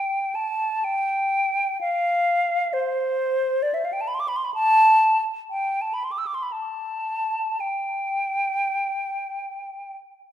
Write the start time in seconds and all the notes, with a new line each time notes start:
Already playing: G5
0.35 A5
0.84 G5
1.81 F5
2.73 C5
3.63 D5
3.74 E5
3.85 F5
3.93 G5
4.01 A5
4.08 B5
4.14 C6
4.20 D6
4.28 B5
4.36 C6
4.44 B5
4.54 A5
5.51 G5
5.81 A5
5.94 B5
6.04 C6
6.12 D6
6.18 E6
6.27 D6
6.34 C6
6.43 B5
6.52 A5
7.60 G5